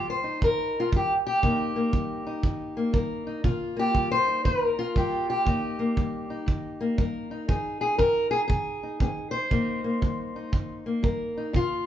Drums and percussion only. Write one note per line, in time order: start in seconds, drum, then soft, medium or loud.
0.42 kick medium
0.93 kick medium
1.43 kick medium
1.93 kick medium
2.43 kick medium
2.94 kick medium
3.44 kick medium
3.95 kick medium
4.45 kick medium
4.96 kick medium
5.47 kick medium
5.97 kick medium
6.48 kick medium
6.98 kick medium
7.49 kick medium
7.99 kick medium
8.50 kick medium
9.00 kick medium
9.51 kick medium
10.02 kick medium
10.53 kick medium
11.04 kick medium
11.54 kick medium